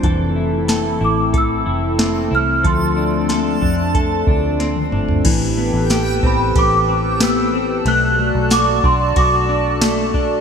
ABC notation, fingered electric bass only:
X:1
M:4/4
L:1/16
Q:1/4=92
K:Am
V:1 name="Fingered electric bass" clef=bass
F,,,6 A,,,4 F,,,4 C,,2 | D,,6 F,,4 D,,4 G,,,2 | A,,,3 A,,,3 A,,,2 A,,,8 | B,,,3 B,,,3 B,,,2 B,,,8 |]